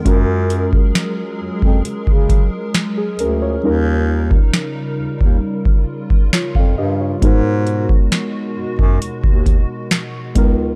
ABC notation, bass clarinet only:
X:1
M:4/4
L:1/16
Q:1/4=67
K:G#dor
V:1 name="Bass clarinet" clef=bass
F,,4 z2 E,, E,, C, C,2 z3 =D,,2 | D,,4 z2 D,, D,, z4 z E,, =G,,2 | G,,4 z2 F,, F,, D,, D,,2 z3 C,,2 |]